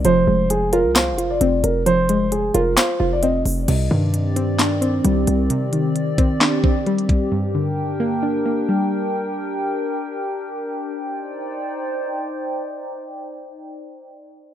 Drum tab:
CC |----------------|----------------|x---------------|----------------|
HH |x---x-x-x-x-x-x-|x-x-x-x-x---x-o-|x---x-x-x-x-x-x-|x-x-x-x-x---xxx-|
CP |--------x-------|--------x-------|--------x-------|--------x-------|
SD |--------o-------|--------o-------|--------o-------|--------o-------|
BD |----------------|----------------|----------------|------o---o---o-|

CC |----------------|----------------|----------------|----------------|
HH |----------------|----------------|----------------|----------------|
CP |----------------|----------------|----------------|----------------|
SD |----------------|----------------|----------------|----------------|
BD |----------------|----------------|----------------|----------------|